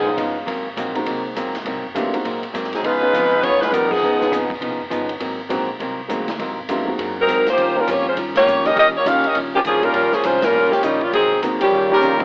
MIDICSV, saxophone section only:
0, 0, Header, 1, 2, 480
1, 0, Start_track
1, 0, Key_signature, -4, "major"
1, 0, Tempo, 296004
1, 762, Time_signature, 4, 2, 24, 8
1, 19858, End_track
2, 0, Start_track
2, 0, Title_t, "Saxophone section"
2, 0, Program_c, 0, 65
2, 0, Note_on_c, 0, 53, 65
2, 0, Note_on_c, 0, 59, 74
2, 0, Note_on_c, 0, 63, 68
2, 0, Note_on_c, 0, 68, 81
2, 290, Note_off_c, 0, 63, 0
2, 292, Note_off_c, 0, 53, 0
2, 292, Note_off_c, 0, 68, 0
2, 294, Note_off_c, 0, 59, 0
2, 4450, Note_on_c, 0, 60, 64
2, 4450, Note_on_c, 0, 68, 72
2, 4453, Note_on_c, 0, 54, 64
2, 4454, Note_on_c, 0, 63, 65
2, 4597, Note_off_c, 0, 63, 0
2, 4606, Note_off_c, 0, 60, 0
2, 4606, Note_off_c, 0, 68, 0
2, 4608, Note_off_c, 0, 54, 0
2, 4617, Note_on_c, 0, 63, 83
2, 4623, Note_on_c, 0, 65, 89
2, 4625, Note_on_c, 0, 71, 101
2, 4627, Note_on_c, 0, 56, 89
2, 5538, Note_off_c, 0, 65, 0
2, 5551, Note_on_c, 0, 68, 83
2, 5556, Note_on_c, 0, 59, 87
2, 5557, Note_on_c, 0, 65, 78
2, 5558, Note_on_c, 0, 73, 100
2, 5569, Note_off_c, 0, 63, 0
2, 5573, Note_off_c, 0, 71, 0
2, 5574, Note_off_c, 0, 56, 0
2, 5859, Note_off_c, 0, 65, 0
2, 5869, Note_on_c, 0, 71, 91
2, 5870, Note_on_c, 0, 63, 74
2, 5873, Note_on_c, 0, 56, 75
2, 5876, Note_off_c, 0, 68, 0
2, 5878, Note_off_c, 0, 59, 0
2, 5878, Note_on_c, 0, 65, 75
2, 5879, Note_off_c, 0, 73, 0
2, 6023, Note_off_c, 0, 63, 0
2, 6035, Note_off_c, 0, 71, 0
2, 6037, Note_off_c, 0, 56, 0
2, 6039, Note_off_c, 0, 65, 0
2, 6040, Note_on_c, 0, 70, 88
2, 6041, Note_on_c, 0, 59, 81
2, 6042, Note_on_c, 0, 55, 83
2, 6042, Note_on_c, 0, 63, 77
2, 6320, Note_off_c, 0, 59, 0
2, 6325, Note_off_c, 0, 63, 0
2, 6335, Note_off_c, 0, 70, 0
2, 6336, Note_off_c, 0, 55, 0
2, 6340, Note_on_c, 0, 59, 71
2, 6342, Note_on_c, 0, 53, 68
2, 6344, Note_on_c, 0, 68, 88
2, 6345, Note_on_c, 0, 63, 69
2, 7298, Note_off_c, 0, 59, 0
2, 7299, Note_off_c, 0, 53, 0
2, 7300, Note_off_c, 0, 68, 0
2, 7301, Note_off_c, 0, 63, 0
2, 11688, Note_on_c, 0, 54, 81
2, 11688, Note_on_c, 0, 60, 82
2, 11689, Note_on_c, 0, 70, 100
2, 11690, Note_on_c, 0, 63, 75
2, 12102, Note_off_c, 0, 54, 0
2, 12102, Note_off_c, 0, 60, 0
2, 12103, Note_off_c, 0, 63, 0
2, 12103, Note_off_c, 0, 70, 0
2, 12162, Note_on_c, 0, 65, 79
2, 12163, Note_on_c, 0, 72, 93
2, 12165, Note_on_c, 0, 58, 79
2, 12171, Note_on_c, 0, 67, 83
2, 12611, Note_off_c, 0, 65, 0
2, 12611, Note_off_c, 0, 72, 0
2, 12612, Note_off_c, 0, 58, 0
2, 12615, Note_off_c, 0, 67, 0
2, 12640, Note_on_c, 0, 65, 62
2, 12644, Note_on_c, 0, 61, 72
2, 12647, Note_on_c, 0, 55, 72
2, 12649, Note_on_c, 0, 70, 82
2, 12795, Note_off_c, 0, 65, 0
2, 12797, Note_off_c, 0, 61, 0
2, 12798, Note_off_c, 0, 55, 0
2, 12799, Note_off_c, 0, 70, 0
2, 12835, Note_on_c, 0, 65, 65
2, 12837, Note_on_c, 0, 67, 68
2, 12841, Note_on_c, 0, 73, 83
2, 12842, Note_on_c, 0, 58, 67
2, 13081, Note_off_c, 0, 65, 0
2, 13095, Note_off_c, 0, 67, 0
2, 13097, Note_off_c, 0, 73, 0
2, 13098, Note_off_c, 0, 58, 0
2, 13100, Note_on_c, 0, 65, 74
2, 13101, Note_on_c, 0, 56, 70
2, 13103, Note_on_c, 0, 61, 75
2, 13104, Note_on_c, 0, 72, 78
2, 13253, Note_off_c, 0, 65, 0
2, 13254, Note_off_c, 0, 56, 0
2, 13255, Note_off_c, 0, 61, 0
2, 13256, Note_off_c, 0, 72, 0
2, 13580, Note_on_c, 0, 67, 89
2, 13582, Note_on_c, 0, 65, 92
2, 13583, Note_on_c, 0, 73, 108
2, 13586, Note_on_c, 0, 58, 95
2, 14008, Note_off_c, 0, 65, 0
2, 14008, Note_off_c, 0, 67, 0
2, 14009, Note_off_c, 0, 73, 0
2, 14010, Note_off_c, 0, 58, 0
2, 14043, Note_on_c, 0, 70, 78
2, 14049, Note_on_c, 0, 67, 83
2, 14051, Note_on_c, 0, 61, 78
2, 14051, Note_on_c, 0, 75, 94
2, 14216, Note_off_c, 0, 70, 0
2, 14219, Note_off_c, 0, 67, 0
2, 14220, Note_off_c, 0, 61, 0
2, 14220, Note_off_c, 0, 75, 0
2, 14240, Note_on_c, 0, 61, 87
2, 14249, Note_on_c, 0, 67, 97
2, 14249, Note_on_c, 0, 70, 92
2, 14252, Note_on_c, 0, 75, 109
2, 14364, Note_off_c, 0, 61, 0
2, 14372, Note_off_c, 0, 67, 0
2, 14372, Note_off_c, 0, 70, 0
2, 14374, Note_off_c, 0, 75, 0
2, 14550, Note_on_c, 0, 58, 78
2, 14553, Note_on_c, 0, 65, 69
2, 14555, Note_on_c, 0, 73, 90
2, 14558, Note_on_c, 0, 67, 69
2, 14699, Note_off_c, 0, 58, 0
2, 14700, Note_off_c, 0, 65, 0
2, 14701, Note_off_c, 0, 73, 0
2, 14703, Note_off_c, 0, 67, 0
2, 14723, Note_on_c, 0, 61, 80
2, 14723, Note_on_c, 0, 67, 75
2, 14723, Note_on_c, 0, 77, 91
2, 14724, Note_on_c, 0, 70, 76
2, 14994, Note_off_c, 0, 67, 0
2, 14998, Note_off_c, 0, 61, 0
2, 14999, Note_off_c, 0, 70, 0
2, 14999, Note_off_c, 0, 77, 0
2, 15014, Note_on_c, 0, 67, 78
2, 15018, Note_on_c, 0, 61, 82
2, 15020, Note_on_c, 0, 75, 95
2, 15022, Note_on_c, 0, 70, 77
2, 15182, Note_off_c, 0, 67, 0
2, 15184, Note_off_c, 0, 61, 0
2, 15185, Note_off_c, 0, 75, 0
2, 15186, Note_off_c, 0, 70, 0
2, 15486, Note_on_c, 0, 61, 80
2, 15486, Note_on_c, 0, 67, 95
2, 15488, Note_on_c, 0, 58, 80
2, 15494, Note_on_c, 0, 53, 78
2, 15563, Note_off_c, 0, 61, 0
2, 15563, Note_off_c, 0, 67, 0
2, 15565, Note_off_c, 0, 58, 0
2, 15569, Note_off_c, 0, 53, 0
2, 15666, Note_on_c, 0, 58, 85
2, 15667, Note_on_c, 0, 68, 94
2, 15668, Note_on_c, 0, 53, 86
2, 15675, Note_on_c, 0, 61, 78
2, 15930, Note_off_c, 0, 58, 0
2, 15930, Note_off_c, 0, 68, 0
2, 15931, Note_off_c, 0, 53, 0
2, 15935, Note_off_c, 0, 61, 0
2, 15950, Note_on_c, 0, 65, 90
2, 15952, Note_on_c, 0, 61, 81
2, 15955, Note_on_c, 0, 70, 93
2, 15958, Note_on_c, 0, 55, 88
2, 16418, Note_off_c, 0, 61, 0
2, 16424, Note_off_c, 0, 65, 0
2, 16427, Note_off_c, 0, 70, 0
2, 16429, Note_off_c, 0, 55, 0
2, 16436, Note_on_c, 0, 68, 83
2, 16437, Note_on_c, 0, 53, 71
2, 16437, Note_on_c, 0, 58, 75
2, 16438, Note_on_c, 0, 61, 77
2, 16607, Note_off_c, 0, 61, 0
2, 16613, Note_off_c, 0, 53, 0
2, 16613, Note_off_c, 0, 58, 0
2, 16613, Note_off_c, 0, 68, 0
2, 16626, Note_on_c, 0, 61, 76
2, 16627, Note_on_c, 0, 65, 73
2, 16628, Note_on_c, 0, 72, 83
2, 16631, Note_on_c, 0, 56, 67
2, 16903, Note_off_c, 0, 65, 0
2, 16905, Note_off_c, 0, 61, 0
2, 16911, Note_off_c, 0, 72, 0
2, 16912, Note_off_c, 0, 56, 0
2, 16923, Note_on_c, 0, 65, 86
2, 16924, Note_on_c, 0, 70, 95
2, 16925, Note_on_c, 0, 61, 88
2, 16926, Note_on_c, 0, 55, 77
2, 17368, Note_off_c, 0, 61, 0
2, 17385, Note_on_c, 0, 67, 85
2, 17387, Note_on_c, 0, 61, 74
2, 17390, Note_on_c, 0, 53, 77
2, 17391, Note_off_c, 0, 65, 0
2, 17391, Note_off_c, 0, 70, 0
2, 17391, Note_on_c, 0, 58, 77
2, 17392, Note_off_c, 0, 55, 0
2, 17552, Note_off_c, 0, 61, 0
2, 17556, Note_off_c, 0, 58, 0
2, 17567, Note_off_c, 0, 67, 0
2, 17570, Note_off_c, 0, 53, 0
2, 17571, Note_on_c, 0, 61, 75
2, 17573, Note_on_c, 0, 55, 68
2, 17576, Note_on_c, 0, 58, 69
2, 17578, Note_on_c, 0, 63, 88
2, 17854, Note_off_c, 0, 58, 0
2, 17855, Note_off_c, 0, 55, 0
2, 17857, Note_off_c, 0, 61, 0
2, 17865, Note_off_c, 0, 63, 0
2, 17874, Note_on_c, 0, 55, 61
2, 17874, Note_on_c, 0, 58, 67
2, 17876, Note_on_c, 0, 61, 71
2, 17880, Note_on_c, 0, 65, 82
2, 18051, Note_off_c, 0, 58, 0
2, 18052, Note_off_c, 0, 55, 0
2, 18053, Note_off_c, 0, 61, 0
2, 18054, Note_off_c, 0, 65, 0
2, 18069, Note_on_c, 0, 60, 85
2, 18070, Note_on_c, 0, 63, 83
2, 18070, Note_on_c, 0, 68, 106
2, 18071, Note_on_c, 0, 54, 78
2, 18504, Note_off_c, 0, 60, 0
2, 18504, Note_off_c, 0, 63, 0
2, 18504, Note_off_c, 0, 68, 0
2, 18505, Note_off_c, 0, 54, 0
2, 18837, Note_on_c, 0, 58, 66
2, 18843, Note_on_c, 0, 61, 76
2, 18844, Note_on_c, 0, 67, 80
2, 18847, Note_on_c, 0, 53, 68
2, 19722, Note_off_c, 0, 58, 0
2, 19725, Note_off_c, 0, 61, 0
2, 19725, Note_off_c, 0, 67, 0
2, 19727, Note_off_c, 0, 53, 0
2, 19858, End_track
0, 0, End_of_file